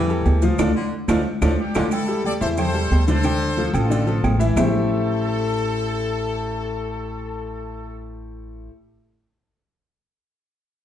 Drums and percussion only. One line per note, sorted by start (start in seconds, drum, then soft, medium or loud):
0.10 high conga soft
0.10 maracas soft
0.26 high conga soft
0.26 low timbale medium
0.26 low agogo medium
0.26 maracas soft
0.42 high conga medium
0.42 maracas medium
0.59 high conga loud
0.59 high timbale loud
0.59 claves loud
0.59 maracas loud
1.09 high conga loud
1.09 high timbale loud
1.09 claves medium
1.09 maracas loud
1.42 high conga loud
1.42 high timbale medium
1.42 claves loud
1.42 maracas loud
1.75 high conga loud
1.75 high timbale loud
1.75 claves loud
1.75 maracas loud
1.91 high conga soft
1.91 low agogo loud
1.91 claves medium
1.91 maracas loud
2.08 high conga soft
2.08 maracas soft
2.25 high conga medium
2.25 low agogo medium
2.25 maracas soft
2.41 high conga soft
2.41 maracas medium
2.57 high conga soft
2.57 low conga medium
2.57 low agogo loud
2.57 claves medium
2.57 maracas medium
2.74 high conga soft
2.74 maracas soft
2.91 high conga soft
2.91 low timbale medium
2.91 low agogo medium
2.91 maracas soft
3.08 high conga medium
3.08 maracas medium
3.23 high conga soft
3.23 low agogo loud
3.23 claves medium
3.23 maracas medium
3.41 high conga soft
3.41 low agogo medium
3.41 maracas soft
3.57 high conga medium
3.57 maracas soft
3.74 high conga soft
3.74 low agogo loud
3.74 claves medium
3.74 maracas medium
3.90 high conga soft
3.90 low agogo medium
3.90 maracas medium
4.07 high conga soft
4.07 maracas soft
4.24 high conga loud
4.24 low timbale medium
4.24 low agogo loud
4.24 claves medium
4.24 maracas soft
4.40 maracas medium
4.57 low conga loud
4.57 low timbale loud
4.57 claves loud
4.57 maracas loud